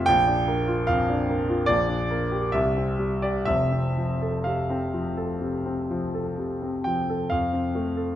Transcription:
grand piano
Already playing: F2 A3 C4 F4
0.06 A#1 G5
0.27 D4
0.48 A#3
0.68 F4
0.87 F2 F5
1.09 D4
1.30 A#3
1.49 F4
1.66 A#1 D5
1.88 D4
2.11 A#3
2.32 G4
2.52 C2 E5
2.77 C4
2.99 G3
3.22 G4 D5
3.45 F1 F2 E5
3.72 C4
3.98 F3
4.22 A4
4.44 C3 F5
4.70 C4
4.94 F3
5.17 A4
5.41 C3
5.66 C4
5.91 F3
6.14 A4
6.38 C3
6.62 C4
6.84 F3 G5
7.09 A4
7.30 F2 F5
7.53 C4
7.75 A3
7.97 A4

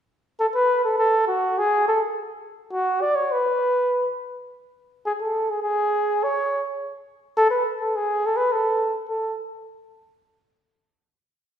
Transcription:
flugelhorn
0.39 A4
0.55 B4
0.84 A4
0.98 A4
1.28 F#4
1.58 G#4
1.88 A4
2.72 F#4
3.01 D5
3.15 C#5
3.31 B4
5.05 G#4
5.20 A4
5.50 G#4
5.62 G#4
6.23 C#5
7.37 A4
7.50 B4
7.80 A4
7.96 G#4
8.26 A4
8.37 B4
8.52 A4
9.09 A4

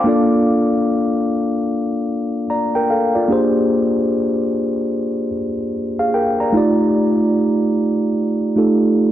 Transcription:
tine electric piano
Already playing: F5 D6
0.04 A#3 D4 F4 A4
0.09 D5
2.50 D5 A#5
2.75 A#4 G5
2.90 A4 F5
3.15 F4 D5
3.28 A#3 D4 G4 G#4
3.32 C5
5.99 G#4 F5
6.14 A#4 G5
6.40 D5 A#5
6.52 A3 D#4 F4 G4
6.57 D5
8.56 A3 D#4 F4 G4 A4

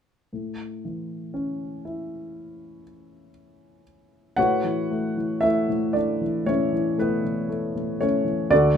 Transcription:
grand piano
0.33 A2
0.85 E3
1.34 C#4
1.85 E4
4.36 A2 F#4 B4 C#5 F#5
4.64 E3
4.91 A3
5.17 E3
5.41 A3 E4 E5
5.68 A2
5.93 A3 D4 D5
6.21 E3
6.46 A2 C#4 E4 C#5
6.72 E3
6.98 A3 B3 E4 B4
7.24 E3
7.49 A3
7.75 A2
8.00 A3 C#4 C#5
8.25 E3
8.50 D2 D4 F#4 A4 D5

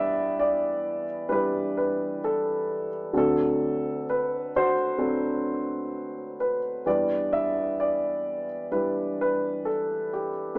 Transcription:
grand piano
Already playing: E2 E3 G3 D4 E4 G4 B4 D5 E5
0.39 D5
1.29 G3 D4 E4 G4 B4
1.77 B4
2.24 A4
3.13 D2 D3 F#3 C4 D4 A4
3.17 F#4 A4
4.10 B4
4.56 F#4 C5
4.98 F#3 C4 D4 A4
6.40 B4
6.86 E2 E3 G3 D4 E4 G4 B4 D5
7.33 E5
7.80 D5
8.71 G3 D4 E4 G4 B4
9.21 B4
9.65 A4
10.13 G4
10.55 D2 A3 D4 F#4

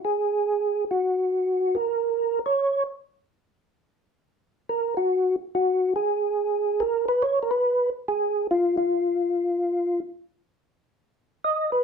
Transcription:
tonewheel organ
0.05 G#4
0.91 F#4
1.75 A#4
2.46 C#5
4.69 A#4
4.97 F#4
5.55 F#4
5.96 G#4
6.80 A#4
7.09 B4
7.22 C#5
7.43 A#4
7.51 B4
8.08 G#4
8.51 F4
8.77 F4
11.44 D#5
11.72 B4

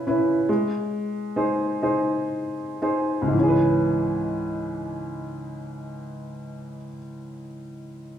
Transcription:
upright piano
Already playing: C#3 C#4 E4 B4
0.07 C#4 E4 B4
0.49 G#3
1.36 D#4 G#4 C5
1.82 D#4 G#4 C5
2.82 D#4 G#4 C5
3.22 C#2
3.27 G#2
3.33 E3
3.37 C#4
3.43 G#4
3.48 B4

